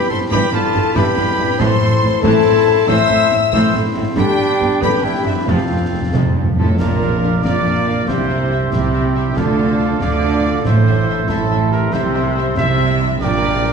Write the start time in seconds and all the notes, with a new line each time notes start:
Already playing: G2 E4 G4 B4 B5
0.10 G1 G2 B3 E4 A4 C5 C6
0.30 G1 G2 E3 G3 E4 G4 B4 B5, concert bass drum, snare
0.52 G1 G2 G3 B3 F4 A4 A5, snare
0.74 G1 G2 B3 E4, snare
0.95 G1 G2 E3 G3 E4 G4 B4 B5, concert bass drum, snare
1.17 G1 G2 G3 B3
1.38 G1 G2 A2 B3 E4
1.46 C4
1.55 C5 C6
1.59 A1 A2 E3 A3 E4 A4 C6, concert bass drum, snare, crash
1.81 A1 A2 A3 C4
2.02 A1 A2 C4 E4
2.22 A1 A2 E3 A3 E4 A4 A5 C6, concert bass drum, snare
2.45 A1 A2 A3 C4
2.67 A1 A2 C4 E4
2.87 A1 A2 E3 A3 E4 C5 E5 C6 E6, concert bass drum, snare
3.10 A1 A2 A3 C4, snare
3.31 A1 A2 C4 E4, snare
3.51 A1 A2 E3 A3 E4 C5 E5 C6 E6, concert bass drum, snare
3.73 A1 A2 A3 C4
3.96 A1 A2 C4 E4
4.00 G2
4.04 B3
4.08 G4
4.13 G2 D5 G5 B5
4.17 G1 D3 D4 G4 G5, concert bass drum, snare, crash
4.39 G1 G2 G3
4.61 G1 G2 B3
4.81 G1 G2 D3 D4 G4 B4 B5, concert bass drum, snare
5.03 G1 G2 G3 E4 G4 G5
5.24 G1 G2 B3 C4 E4 E5
5.30 F2
5.34 C4
5.39 A4
5.43 F1 F5
5.47 F2 C3 F3 C4 F4 F5 A5, concert bass drum, snare
5.56 F2
5.64 F2
5.69 F1 F2 F3 A3
5.78 F2
5.86 F2
5.92 F1 F2 A3 C4
6.01 F2
6.09 F2
6.14 F1 F2 C3 F3, concert bass drum, snare
6.25 F2
6.33 F1 F2 G2 F3 A3
6.41 F2
6.49 F2
6.56 F1 F2 A2 A3 C4 F4 A4
6.64 F2
6.72 F2
6.79 A#1 A#2 F3 D4 F4 A#4 F5 D6, concert bass drum, snare, crash
6.91 F3
7.02 D4 A#4 F5
7.13 A#4
7.23 D4 A#4 F5
7.34 D5
7.44 A#1 A#2 F3 D4 A#4 D5 F5 A#5, concert bass drum, snare
7.56 F6
7.66 D4 A#4 F5 A#5
7.78 D5
7.87 D4 A#4 F5
8.08 C2 C3 G3 E4 G4 C5 E5 C6, concert bass drum, snare
8.19 G3
8.30 E4 G4 E5
8.41 G4
8.51 E4 G4 E5
8.62 G4
8.72 C2 C3 G3 E4 G4 E5 G5, concert bass drum, snare
8.84 E6
8.93 E4 G4 E5 G5
9.04 E5
9.14 E4 G4 E5
9.26 E4
9.36 D2 D3 A3 D4 F4 A4 F5 D6, concert bass drum, snare
9.58 D4 F4 F5
9.69 F4
9.80 D4 F4 F5
9.91 D5
10.01 D2 D3 A3 D4 F4 A4 D5 F5, concert bass drum, snare
10.12 A5
10.23 D4 F4 F5
10.33 D5
10.44 D4 F4 A4 F5
10.55 D4
10.65 A1 A2 A3 E4 A4 C5 E5 C6, concert bass drum, snare
10.76 E3
10.87 C4 E4 A4 E5
10.98 E4
11.09 E4 A4 E5
11.19 C5
11.28 A1 A2 A3 E4 A4 E5, concert bass drum, snare
11.40 A5
11.51 E4 A4 E5
11.61 C5
11.71 E4 G4 A4 A#4 E5
11.83 C4
11.92 C2 C3 G3 E4 G4 C5 E5, concert bass drum, snare, crash
12.04 C4
12.15 G3 E4 G4 E5
12.27 E4
12.37 E4 G4 E5
12.48 E4
12.56 C2 C3 G3 E4 G4 C5 E5, concert bass drum, snare
12.69 G5
12.79 E4 G4 E5
12.89 G4
13.00 E4 G4 E5
13.10 G3
13.21 A#1 A#2 G3 D4 G4 A#4 D5 G5 A#5, concert bass drum, snare
13.32 A#3
13.43 G3 D4 G4 G5
13.64 D4 G4 G5